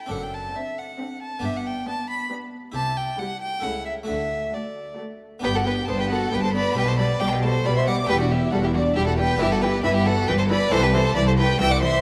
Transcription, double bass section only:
0.10 F#1
1.44 G1
2.75 C2
3.63 C#2
4.07 D2
5.43 G1
5.88 G1
6.32 G1
6.77 B1
7.21 B1
7.65 B1
8.09 E1
8.53 E1
8.96 E1
9.40 G1
9.84 G1
10.28 G1
10.71 C2
11.16 C2
11.60 C2

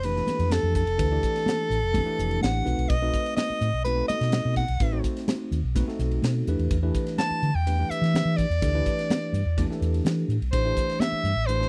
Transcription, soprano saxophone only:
0.04 B4
0.52 A4
0.76 A4
2.42 F#5
2.89 D#5
3.37 D#5
3.84 B4
4.08 D#5
4.57 F#5
7.18 A5
7.55 G5
7.90 E5
8.37 D5
10.52 C5
11.00 E5
11.47 C5

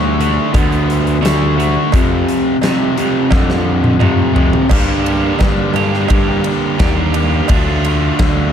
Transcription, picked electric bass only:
Already playing: D2
0.54 D2
1.94 F2
3.31 F2
4.71 G2
5.40 G2
5.74 G2
6.10 G2
6.80 D#2
7.50 D2
8.20 D2

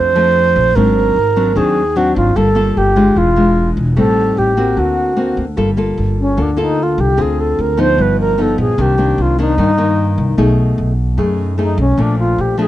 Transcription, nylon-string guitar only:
Already playing: F2 F3 A3 D4
0.15 F3 A3 D4
0.76 G#2 F#3 C4 D4
1.36 F#3 C4 D4
1.55 D#3 F#3 C4 D4
1.96 F#3 C4 D4
2.36 G3 A#3 F4 A4
2.55 A#3 F4 A4
2.96 G#3 D4 F4
3.16 E3
3.36 G#3 D4 F4
3.96 A2 G3 C4 D#4
4.57 A#3 C4 F#4
4.76 D3
5.16 A#3 C4 F#4
5.57 G3 A#3 F4 A4
5.77 A#3 F4 A4
6.37 D3 A#3 F4 A4
6.57 A#3 F4 A4
7.17 D3 C4 F4 G#4
7.77 F3 B3 D#4
7.97 G2
8.38 F3 B3 D#4
8.78 C3 D#3 A#3 D4
8.98 D#3 A#3 D4
9.38 D#3 A#3 D4
9.58 G2 D#3 A#3 D4
9.78 D#3 A#3
10.37 B2 A3 D#4 G#4
11.17 F#2 A3 D#4 G#4
11.58 A3 D#4 G#4
11.97 A#2 F3 A3 D4
12.58 F3 A3 D4

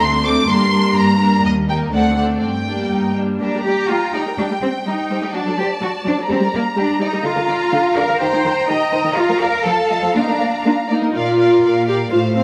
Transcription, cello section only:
0.01 D2
0.49 G2
0.97 G2
1.45 D#2
1.93 D2
2.42 G2
2.92 G2
3.42 D4
3.65 G4
3.89 F4
4.14 D#4
4.38 D4
4.61 C4
4.86 D#4
5.34 D4
5.58 G4
5.82 F#4
6.07 D4
6.30 C4
6.55 A#3
6.79 D4
7.02 D#4
7.27 F4
7.98 A#4
8.21 C5
8.69 D#5
9.17 F4
9.41 A#4
9.65 A4
10.15 D4
10.22 D#4
10.29 D4
11.15 A#2
11.64 A#2
12.12 A2

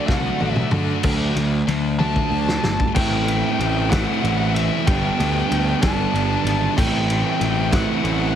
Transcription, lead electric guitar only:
0.06 F#5
0.53 E5
1.99 A5
2.95 G5
3.90 F#5
4.54 E5
4.87 G5
5.82 A5
6.78 G5
7.73 F#5

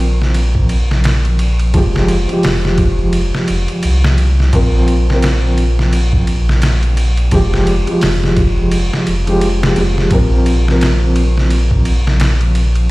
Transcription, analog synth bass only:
Already playing: A#1
1.75 F1
2.45 F1
3.50 F1
3.85 C2
4.53 A#1
7.32 F1
8.03 F1
9.08 F1
9.77 F1
10.11 A#1

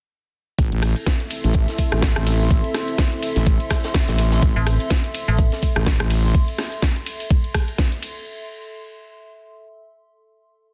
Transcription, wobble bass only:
0.59 A1
0.72 A1
1.44 A1
1.92 A1
2.16 A1
2.51 A1
3.36 A1
4.08 A1
4.43 A1
5.76 A1
6.00 A1

